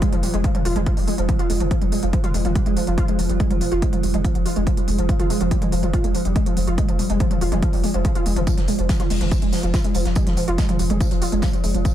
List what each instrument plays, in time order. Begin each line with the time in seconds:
Already playing: synth drone F3
0.02 synth arpeggio sound G#3, kick, closed hi-hat
0.12 sub bass F1, synth arpeggio sound F3, closed hi-hat, mid tom
0.23 synth arpeggio sound G3, open hi-hat
0.34 sub bass F1, synth arpeggio sound G#3, closed hi-hat
0.44 synth arpeggio sound F3, kick, closed hi-hat
0.55 synth arpeggio sound F3, closed hi-hat, mid tom
0.65 sub bass F1, synth arpeggio sound F4, open hi-hat
0.76 sub bass F1, synth arpeggio sound G#3, closed hi-hat, mid tom
0.86 synth arpeggio sound F3, kick, closed hi-hat
0.97 sub bass F1, synth arpeggio sound G3, open hi-hat
1.07 synth arpeggio sound G#3, open hi-hat
1.18 sub bass F1, synth arpeggio sound F3, closed hi-hat
1.29 synth arpeggio sound F3, kick, closed hi-hat
1.39 synth arpeggio sound F4, closed hi-hat
1.50 sub bass F1, synth arpeggio sound G#3, open hi-hat
1.60 sub bass F1, synth arpeggio sound F3, closed hi-hat, mid tom
1.71 synth arpeggio sound F3, kick, closed hi-hat
1.81 sub bass F1, synth arpeggio sound G3, closed hi-hat, mid tom
1.92 synth arpeggio sound G#3, open hi-hat
2.03 sub bass F1, synth arpeggio sound F3, closed hi-hat
2.13 synth arpeggio sound F3, kick, closed hi-hat
2.24 synth arpeggio sound F4, closed hi-hat, mid tom
2.34 sub bass F1, synth arpeggio sound G#3, open hi-hat
2.45 sub bass F1, synth arpeggio sound F3, closed hi-hat, mid tom
2.55 synth arpeggio sound G3, kick, closed hi-hat
2.66 sub bass F1, synth arpeggio sound G#3, closed hi-hat
2.77 synth arpeggio sound F3, open hi-hat
2.87 sub bass F1, synth arpeggio sound F3, closed hi-hat
2.98 synth arpeggio sound F4, kick, closed hi-hat
3.08 synth arpeggio sound G#3, closed hi-hat
3.19 sub bass F1, synth arpeggio sound F3, open hi-hat
3.29 sub bass F1, synth arpeggio sound G3, closed hi-hat
3.40 synth arpeggio sound G#3, kick, closed hi-hat
3.51 sub bass F1, synth arpeggio sound F3, closed hi-hat, mid tom
3.61 synth arpeggio sound F3, open hi-hat
3.72 sub bass F1, synth arpeggio sound F4, closed hi-hat
3.82 synth arpeggio sound G#3, kick, closed hi-hat
3.93 synth arpeggio sound F3, closed hi-hat, mid tom
4.03 sub bass F1, synth arpeggio sound G3, open hi-hat
4.14 sub bass F1, synth arpeggio sound G#3, closed hi-hat, mid tom
4.24 synth arpeggio sound F3, kick, closed hi-hat
4.35 sub bass F1, synth arpeggio sound F3, closed hi-hat
4.46 synth arpeggio sound F4, open hi-hat
4.56 sub bass F1, synth arpeggio sound G#3, closed hi-hat
4.67 synth arpeggio sound F3, kick, closed hi-hat
4.77 synth arpeggio sound G3, closed hi-hat
4.88 sub bass F1, synth arpeggio sound G#3, open hi-hat
4.98 sub bass F1, synth arpeggio sound F3, closed hi-hat
5.09 synth arpeggio sound F3, kick, closed hi-hat
5.20 sub bass F1, synth arpeggio sound F4, closed hi-hat, mid tom
5.30 synth arpeggio sound G#3, open hi-hat
5.41 sub bass F1, synth arpeggio sound F3, closed hi-hat
5.51 synth arpeggio sound G3, kick, closed hi-hat
5.62 synth arpeggio sound G#3, closed hi-hat, mid tom
5.72 sub bass F1, synth arpeggio sound F3, open hi-hat
5.83 sub bass F1, synth arpeggio sound F3, closed hi-hat, mid tom
5.93 synth arpeggio sound F4, kick, closed hi-hat
6.04 sub bass F1, synth arpeggio sound G#3, closed hi-hat
6.15 synth arpeggio sound F3, open hi-hat
6.25 sub bass F1, synth arpeggio sound G3, closed hi-hat
6.36 synth arpeggio sound G#3, kick, closed hi-hat
6.46 synth arpeggio sound F3, closed hi-hat
6.57 sub bass F1, synth arpeggio sound F3, open hi-hat
6.67 sub bass F1, synth arpeggio sound F4, closed hi-hat
6.78 synth arpeggio sound G#3, kick, closed hi-hat
6.89 sub bass F1, synth arpeggio sound F3, closed hi-hat, mid tom
6.99 synth arpeggio sound G3, open hi-hat
7.10 sub bass F1, synth arpeggio sound G#3, closed hi-hat
7.20 synth arpeggio sound F3, kick, closed hi-hat
7.31 synth arpeggio sound F3, closed hi-hat, mid tom
7.41 sub bass F1, synth arpeggio sound F4, open hi-hat
7.52 sub bass F1, synth arpeggio sound G#3, closed hi-hat, mid tom
7.62 synth arpeggio sound F3, kick, closed hi-hat
7.73 sub bass F1, synth arpeggio sound G3, open hi-hat
7.84 synth arpeggio sound G#3, open hi-hat
7.94 sub bass F1, synth arpeggio sound F3, closed hi-hat
8.05 synth arpeggio sound F3, kick, closed hi-hat
8.15 synth arpeggio sound F4, closed hi-hat
8.26 sub bass F1, synth arpeggio sound G#3, open hi-hat
8.36 sub bass F1, synth arpeggio sound F3, closed hi-hat, mid tom
8.47 synth arpeggio sound F3, synth drone F3, kick, closed hi-hat, tambourine
8.57 sub bass F1, synth arpeggio sound F3, snare, closed hi-hat, mid tom
8.68 synth arpeggio sound G#3, open hi-hat, tambourine
8.79 sub bass F1, synth arpeggio sound F3, closed hi-hat
8.89 synth arpeggio sound F3, kick, snare, closed hi-hat, tambourine
9.00 synth arpeggio sound F4, snare, closed hi-hat, mid tom
9.10 sub bass F1, synth arpeggio sound G#3, snare, open hi-hat
9.21 sub bass F1, synth arpeggio sound F3, snare, closed hi-hat, mid tom
9.31 synth arpeggio sound F3, kick, closed hi-hat, tambourine
9.42 sub bass F1, synth arpeggio sound G#3, closed hi-hat
9.52 synth arpeggio sound F3, snare, open hi-hat, tambourine
9.63 sub bass F1, synth arpeggio sound F3, closed hi-hat
9.74 synth arpeggio sound F4, kick, snare, closed hi-hat, tambourine
9.84 synth arpeggio sound G#3, closed hi-hat
9.94 sub bass F1, synth arpeggio sound F3, open hi-hat, tambourine
10.05 sub bass F1, synth arpeggio sound F3, snare, closed hi-hat
10.15 synth arpeggio sound G#3, kick, closed hi-hat, tambourine
10.27 sub bass F1, synth arpeggio sound F3, snare, closed hi-hat, mid tom
10.37 synth arpeggio sound F3, open hi-hat, tambourine
10.48 sub bass F1, synth arpeggio sound F4, closed hi-hat
10.58 synth arpeggio sound G#3, kick, snare, closed hi-hat, tambourine
10.69 synth arpeggio sound F3, closed hi-hat, mid tom
10.79 sub bass F1, synth arpeggio sound F3, open hi-hat, tambourine
10.90 sub bass F1, synth arpeggio sound G#3, closed hi-hat, mid tom
11.00 synth arpeggio sound F3, kick, closed hi-hat, tambourine
11.11 sub bass F1, synth arpeggio sound F3, closed hi-hat
11.22 synth arpeggio sound F4, open hi-hat, tambourine
11.32 sub bass F1, synth arpeggio sound G#3, closed hi-hat
11.42 synth arpeggio sound F3, kick, snare, closed hi-hat, tambourine
11.53 synth arpeggio sound F3, closed hi-hat
11.64 sub bass F1, synth arpeggio sound G#3, open hi-hat, tambourine
11.74 sub bass F1, synth arpeggio sound F3, closed hi-hat
11.85 synth arpeggio sound F3, kick, closed hi-hat, tambourine